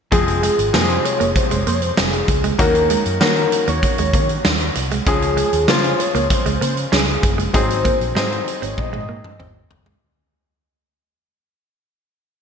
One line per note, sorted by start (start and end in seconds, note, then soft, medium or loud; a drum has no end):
0.11 0.47 F1 loud
0.11 0.61 F3 medium
0.11 0.23 F3 medium
0.11 0.61 G#3 medium
0.11 0.61 C4 medium
0.11 0.76 G#4 loud
0.11 0.61 G#4 medium
0.11 kick medium
0.11 closed hi-hat medium
0.27 muted clean electric guitar stroke soft
0.27 closed hi-hat soft
0.43 0.54 G#3 medium
0.43 closed hi-hat medium
0.59 0.70 G#1 medium
0.59 closed hi-hat soft
0.73 0.97 F2 medium
0.73 1.72 C3 medium
0.73 1.72 F3 medium
0.73 1.72 G#3 medium
0.73 0.85 A#3 medium
0.73 0.81 G4 medium
0.73 1.06 C5 loud
0.73 snare loud
0.81 1.76 G#4 medium
0.90 closed hi-hat soft
1.04 1.37 C#5 loud
1.04 muted clean electric guitar stroke soft
1.04 closed hi-hat medium
1.20 1.32 F1 medium
1.20 1.31 A#3 medium
1.20 closed hi-hat medium
1.36 1.66 C5 loud
1.36 muted clean electric guitar stroke soft
1.36 kick medium
1.36 closed hi-hat medium
1.51 1.63 F1 medium
1.51 1.62 G#3 medium
1.51 closed hi-hat medium
1.67 1.90 F2 medium
1.67 1.78 A#3 medium
1.67 1.76 C5 medium
1.67 closed hi-hat medium
1.74 1.83 C#5 medium
1.82 2.00 C5 medium
1.82 closed hi-hat soft
1.97 2.21 F1 medium
1.97 2.09 C4 medium
1.97 2.44 G#4 medium
1.97 snare loud
2.13 closed hi-hat soft
2.28 2.52 C#2 medium
2.28 muted clean electric guitar stroke soft
2.28 kick medium
2.28 closed hi-hat medium
2.44 2.55 G#3 medium
2.44 closed hi-hat soft
2.58 2.94 D#2 loud
2.58 3.08 D#3 medium
2.58 3.08 A#3 medium
2.58 3.08 C#4 medium
2.58 2.70 D#4 medium
2.58 3.09 F#4 medium
2.58 3.18 A#4 loud
2.58 kick loud
2.58 closed hi-hat medium
2.75 muted clean electric guitar stroke soft
2.75 closed hi-hat medium
2.90 3.01 G#3 medium
2.90 closed hi-hat medium
3.06 3.17 F#2 medium
3.06 closed hi-hat soft
3.20 4.19 D#3 medium
3.20 3.45 D#3 medium
3.20 4.19 A#3 medium
3.20 3.32 A#3 medium
3.20 4.19 C#4 medium
3.20 4.20 F#4 medium
3.20 3.65 A#4 medium
3.20 snare loud
3.37 closed hi-hat soft
3.52 muted clean electric guitar stroke soft
3.52 closed hi-hat medium
3.68 3.79 D#2 medium
3.68 3.79 A#3 medium
3.68 3.83 C#5 medium
3.68 closed hi-hat soft
3.83 4.73 C#5 medium
3.83 muted clean electric guitar stroke soft
3.83 kick medium
3.83 closed hi-hat medium
3.98 4.15 D#2 medium
3.98 4.10 G#3 medium
3.98 closed hi-hat medium
4.13 4.37 D#3 medium
4.13 4.25 A#3 medium
4.13 kick medium
4.13 closed hi-hat medium
4.29 closed hi-hat soft
4.45 4.68 D#2 medium
4.45 4.56 C#4 medium
4.45 snare loud
4.60 closed hi-hat soft
4.75 4.99 C2 medium
4.75 muted clean electric guitar stroke soft
4.75 closed hi-hat medium
4.91 5.02 G#3 medium
4.91 closed hi-hat soft
5.06 5.42 C#2 loud
5.06 5.56 F3 medium
5.06 5.56 G#3 medium
5.06 5.18 C#4 medium
5.06 5.56 C#4 medium
5.06 5.71 G#4 medium
5.06 5.56 G#4 medium
5.06 kick loud
5.06 closed hi-hat medium
5.22 muted clean electric guitar stroke soft
5.22 closed hi-hat medium
5.37 5.48 G#3 medium
5.37 closed hi-hat medium
5.53 5.65 D#2 medium
5.53 closed hi-hat soft
5.68 5.92 C#3 medium
5.68 6.67 F3 medium
5.68 6.67 G#3 medium
5.68 5.79 A#3 medium
5.68 6.67 C#4 medium
5.68 6.67 F4 medium
5.68 6.02 C5 medium
5.68 snare loud
5.84 closed hi-hat soft
5.99 6.34 C#5 medium
5.99 muted clean electric guitar stroke soft
5.99 closed hi-hat medium
6.15 6.26 C#2 medium
6.15 6.26 A#3 medium
6.15 closed hi-hat medium
6.30 6.62 C5 medium
6.30 muted clean electric guitar stroke soft
6.30 kick medium
6.30 closed hi-hat medium
6.46 6.57 C#2 medium
6.46 6.57 G#3 medium
6.46 closed hi-hat medium
6.61 6.85 C#3 medium
6.61 6.72 A#3 medium
6.61 6.76 C5 medium
6.61 closed hi-hat medium
6.77 closed hi-hat soft
6.92 7.15 C#2 medium
6.92 7.03 C#4 medium
6.92 7.36 G#4 medium
6.92 snare loud
7.08 closed hi-hat soft
7.23 7.47 F#1 medium
7.23 muted clean electric guitar stroke soft
7.23 kick medium
7.23 closed hi-hat medium
7.38 7.49 G#3 medium
7.38 closed hi-hat soft
7.53 7.89 G#1 loud
7.53 8.03 F#3 medium
7.53 7.65 G#3 medium
7.53 8.03 C4 medium
7.53 8.03 D#4 medium
7.53 8.04 G#4 medium
7.53 8.13 C5 loud
7.53 kick medium
7.53 closed hi-hat medium
7.69 muted clean electric guitar stroke soft
7.69 closed hi-hat soft
7.85 7.96 A#3 medium
7.85 kick medium
7.85 closed hi-hat medium
8.00 8.12 A#1 medium
8.00 closed hi-hat soft
8.15 8.39 G#2 medium
8.15 9.14 F#3 medium
8.15 8.26 C4 medium
8.15 9.14 C4 medium
8.15 9.14 D#4 medium
8.15 9.15 G#4 medium
8.15 8.65 C5 loud
8.15 snare loud
8.32 closed hi-hat soft
8.46 muted clean electric guitar stroke soft
8.46 closed hi-hat medium
8.62 8.74 G#1 medium
8.62 8.73 C4 medium
8.62 8.81 C#5 medium
8.62 closed hi-hat medium
8.78 9.71 D#5 loud
8.78 muted clean electric guitar stroke soft
8.78 kick medium
8.78 high tom medium
8.93 9.05 G#1 medium
8.93 9.04 G#3 medium
8.93 high tom soft
9.09 9.32 G#2 medium
9.09 9.20 A#3 medium
9.24 mid tom medium
9.39 9.63 G#1 medium
9.39 9.51 C4 medium
9.39 mid tom medium
9.70 9.94 F#1 medium
9.70 muted clean electric guitar stroke soft
9.70 floor tom medium
9.86 9.97 G#3 medium
9.86 floor tom medium